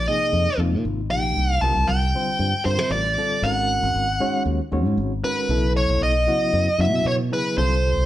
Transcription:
0.08 reed electric piano C3 F3 A#3 D#4 G#4, lead electric guitar D#5
0.33 fingered electric bass F2
0.58 fingered electric bass F2, reed electric piano C3 F3 A#3 D#4 F4
0.72 fingered electric bass A#2
0.85 fingered electric bass G#1
1.10 fingered electric bass A#1, reed electric piano C3 F3 A#3 D#4 G4, lead electric guitar G5
1.37 fingered electric bass C2
1.53 lead electric guitar F5
1.61 fingered electric bass C2, reed electric piano D3 G3 C4 F4 A#4, lead electric guitar A5
1.76 fingered electric bass C2
1.87 fingered electric bass C2, lead electric guitar G5
2.14 reed electric piano D3 G3 C4 F4 C5
2.39 fingered electric bass G2
2.65 fingered electric bass G2, reed electric piano D3 G3 C4 F4 A#4, lead electric guitar C5
2.79 fingered electric bass C3
2.90 fingered electric bass A1, lead electric guitar D5
3.17 reed electric piano D3 G3 C4 F4 A4
3.42 fingered electric bass G#1, reed electric piano D#3 G#3 C#4 F#4 A#4, lead electric guitar F#5
3.83 fingered electric bass G#1
3.94 fingered electric bass G#1
4.20 reed electric piano D#3 G#3 C#4 F#4 C#5
4.46 fingered electric bass D#2
4.72 fingered electric bass D#2, reed electric piano D#3 G#3 C#4 F#4 C#5
4.85 fingered electric bass G#2
4.97 fingered electric bass G#1
5.24 reed electric piano D#3 G#3 C#4 F#4 A#4, lead electric guitar B4
5.49 fingered electric bass B1, reed electric piano C#3 F#3 B3 E4 A4
5.77 lead electric guitar C#5
5.89 fingered electric bass B1
6.01 fingered electric bass B1, lead electric guitar D#5
6.27 reed electric piano C#3 F#3 B3 E4 F#4
6.53 fingered electric bass F#2
6.78 fingered electric bass F#2, reed electric piano C#3 F#3 B3 E4 F#4, lead electric guitar E5
6.92 fingered electric bass B2
7.05 fingered electric bass B2, lead electric guitar C#5
7.30 reed electric piano C#3 F#3 B3 E4 G#4, lead electric guitar B4
7.57 fingered electric bass C2, reed electric piano D3 G3 C4 F4 A4, lead electric guitar C5
7.97 fingered electric bass C2

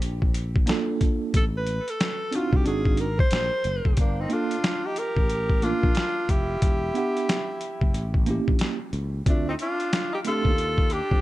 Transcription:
Already playing: fretless electric bass A#1, alto saxophone G4
0.02 closed hi-hat
0.22 kick
0.34 closed hi-hat
0.56 kick
0.66 tine electric piano A#3 D4 F4 A4, snare, closed hi-hat
1.01 kick, closed hi-hat
1.34 fretless electric bass A1, alto saxophone A4, kick, closed hi-hat
1.57 alto saxophone B4
1.67 closed hi-hat
1.88 alto saxophone A4, closed hi-hat
2.00 snare, closed hi-hat
2.31 tine electric piano C4 D4 D#4 F#4, alto saxophone F4, closed hi-hat
2.52 fretless electric bass C2, alto saxophone G4, kick
2.64 fretless electric bass G#1, tine electric piano C4 D4 D#4 F#4, alto saxophone G#4, closed hi-hat
2.85 kick
2.97 alto saxophone A#4, closed hi-hat
3.19 alto saxophone C5, kick
3.31 fretless electric bass A#1, snare, closed hi-hat
3.64 fretless electric bass F#1, closed hi-hat
3.85 fretless electric bass F1, kick
3.97 fretless electric bass G1, tenor saxophone A#3, alto saxophone D4, kick, closed hi-hat
4.20 tenor saxophone C4, alto saxophone D#4
4.29 tine electric piano A#3 D4 F4, alto saxophone F4, closed hi-hat
4.34 tenor saxophone D4, tine electric piano A4
4.51 closed hi-hat
4.64 snare, closed hi-hat
4.86 tenor saxophone D#4, alto saxophone G4
4.96 tenor saxophone G4, alto saxophone A#4, closed hi-hat
5.17 fretless electric bass A1, kick
5.30 closed hi-hat
5.50 kick
5.62 tine electric piano A#3 D4 F4 A#4, tenor saxophone D4, alto saxophone F4, closed hi-hat
5.83 fretless electric bass A#1, kick
5.95 snare, closed hi-hat
6.29 fretless electric bass F1, tenor saxophone E4, alto saxophone G4, kick, closed hi-hat
6.62 fretless electric bass E1, kick, closed hi-hat
6.94 tine electric piano B3 D4 F#5, closed hi-hat
6.99 tine electric piano G4
7.17 closed hi-hat
7.29 snare, closed hi-hat
7.61 closed hi-hat
7.81 fretless electric bass F#1, kick
7.94 fretless electric bass A1, closed hi-hat
8.14 kick
8.26 tine electric piano A#3 C#4 E4, closed hi-hat
8.30 tine electric piano G4
8.48 fretless electric bass A#1, kick
8.59 snare, closed hi-hat
8.93 fretless electric bass C#2, closed hi-hat
9.26 fretless electric bass D2, tine electric piano A3 C4 D4, tenor saxophone A3, alto saxophone D4, kick, closed hi-hat
9.30 tine electric piano F4
9.48 tenor saxophone C4, alto saxophone D#4
9.59 tenor saxophone D4, alto saxophone F4, closed hi-hat
9.80 closed hi-hat
9.93 snare, closed hi-hat
10.13 tenor saxophone D#4, alto saxophone G4
10.25 tine electric piano A3 C4 D4, tenor saxophone F4, alto saxophone A4, closed hi-hat
10.29 tine electric piano G4
10.45 fretless electric bass D#2, kick
10.58 closed hi-hat
10.78 kick
10.90 tenor saxophone D4, alto saxophone G4, closed hi-hat
11.11 fretless electric bass F2, kick

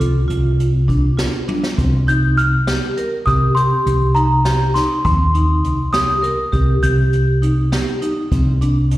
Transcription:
Already playing: celesta D6
0.00 fretless electric bass C2, vibraphone F4, closed hi-hat
0.28 fretless electric bass C2, vibraphone F4, closed hi-hat
0.60 closed hi-hat
0.88 vibraphone D4, kick, closed hi-hat
1.18 vibraphone F4, snare, closed hi-hat
1.48 vibraphone D4, high tom
1.64 snare
1.77 fretless electric bass C2, vibraphone C4, kick, closed hi-hat
2.07 vibraphone D#4, celesta G6, closed hi-hat
2.38 celesta F6, closed hi-hat
2.67 vibraphone G4, snare, closed hi-hat
2.97 vibraphone A#4, closed hi-hat
3.26 fretless electric bass C3, vibraphone G4, celesta D#6, kick, closed hi-hat
3.55 vibraphone G4, celesta C6, closed hi-hat
3.86 fretless electric bass C2, closed hi-hat
4.15 vibraphone D#4, celesta A#5, closed hi-hat
4.45 vibraphone G4, snare, closed hi-hat
4.74 vibraphone D#4, celesta C6, snare, closed hi-hat
5.05 fretless electric bass D#2, vibraphone C4, celesta C6, kick, closed hi-hat
5.34 vibraphone D#4, closed hi-hat
5.64 fretless electric bass C2, closed hi-hat
5.93 vibraphone G4, celesta D#6, snare, closed hi-hat
6.23 vibraphone A#4, closed hi-hat
6.52 fretless electric bass C2, vibraphone G4, kick, closed hi-hat
6.83 fretless electric bass C2, vibraphone G4, celesta G6, closed hi-hat
7.13 closed hi-hat
7.42 vibraphone D#4, closed hi-hat
7.72 vibraphone G4, snare, closed hi-hat
8.02 vibraphone D#4, closed hi-hat
8.32 fretless electric bass C2, vibraphone C4, kick, closed hi-hat
8.61 vibraphone D4, closed hi-hat
8.91 closed hi-hat

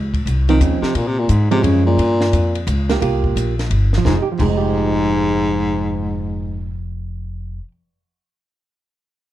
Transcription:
Already playing: upright bass C#2
0.14 kick, ride
0.26 upright bass C2, kick, hi-hat pedal, ride
0.49 baritone saxophone D#3, hollow-body jazz guitar F3 C4 D#4, ride
0.60 upright bass D#2, baritone saxophone C#3, kick, hi-hat pedal, ride
0.82 baritone saxophone C3, muted upright bass stroke, snare
0.95 upright bass A#2, baritone saxophone A#2, kick, ride
1.07 baritone saxophone C3
1.19 baritone saxophone A#2
1.29 upright bass G#2, baritone saxophone G#2, kick, hi-hat pedal, ride
1.51 baritone saxophone C3, hollow-body jazz guitar F3 G#3 C#4, ride
1.63 upright bass F#2, baritone saxophone C#3, kick, ride
1.86 baritone saxophone A#2
1.98 upright bass G2, kick, ride
2.21 snare
2.33 upright bass F2, kick, hi-hat pedal, ride
2.55 ride
2.67 upright bass C#2, kick, hi-hat pedal, ride
2.89 hollow-body jazz guitar A#3 F4 G4, snare, ride
3.01 upright bass C2, hollow-body jazz guitar A#3 F4 G4, kick, ride
3.24 kick
3.36 upright bass A#1, kick, hi-hat pedal, ride
3.59 snare, ride
3.70 upright bass G1, kick, ride
3.93 snare
3.98 hollow-body jazz guitar F3
4.05 upright bass F1, baritone saxophone G#2, hollow-body jazz guitar G#3, kick, snare
4.15 hollow-body jazz guitar D#4
4.22 hollow-body jazz guitar G4
4.32 hollow-body jazz guitar F3
4.39 upright bass F1, baritone saxophone G#2, hollow-body jazz guitar G#3, kick, crash
4.50 hollow-body jazz guitar D#4
4.57 hollow-body jazz guitar G4

